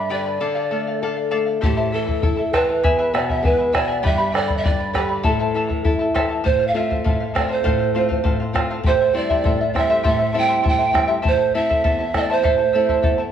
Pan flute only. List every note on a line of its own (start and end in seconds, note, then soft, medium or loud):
0.00 0.11 E5 loud
0.13 1.29 D5 medium
1.63 1.95 G4 medium
1.93 2.55 A4 loud
2.53 3.13 B4 medium
3.14 3.28 D5 medium
3.30 3.43 E5 medium
3.44 3.72 B4 medium
3.75 4.07 D5 medium
4.05 4.35 E5 medium
4.35 4.57 D5 medium
4.57 4.66 E5 medium
4.64 4.97 D5 medium
4.95 5.28 G4 medium
5.27 6.16 A4 medium
6.45 6.69 C5 medium
6.67 6.76 F5 medium
6.74 7.35 E5 medium
7.36 7.50 D5 medium
7.51 8.37 C5 medium
8.87 9.14 C5 medium
9.16 9.72 D5 loud
9.77 10.04 E5 medium
10.07 10.40 E5 medium
10.38 10.66 G5 loud
10.68 11.08 G5 loud
11.28 11.54 C5 medium
11.55 12.18 E5 medium
12.16 12.33 D5 medium
12.32 13.20 C5 medium